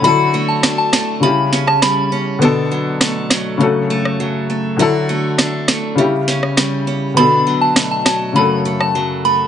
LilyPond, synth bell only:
\new Staff \with { instrumentName = "Synth bell" } { \time 4/4 \key b \minor \tempo 4 = 101 b''8 r16 a''16 r16 a''16 a''16 r16 b''16 r8 a''16 b''8. r16 | r1 | r1 | b''8 r16 a''16 r16 a''16 a''16 r16 b''16 r8 a''16 r8 b''16 r16 | }